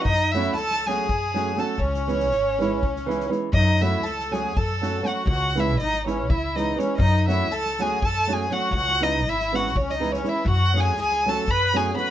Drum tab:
SD |--o-ooo---o-o-|-oooo-o--oooo-|--o-ooo---o-o-|--o-ooo---o-o-|
BD |o-------o-----|o-------o-----|o-------o-----|o-------o-----|

SD |--o-ooo---o-o-|-oo-oooo-oooo-|--o-ooo---o-o-|
BD |o-------o-----|o-------o-----|o-------o-----|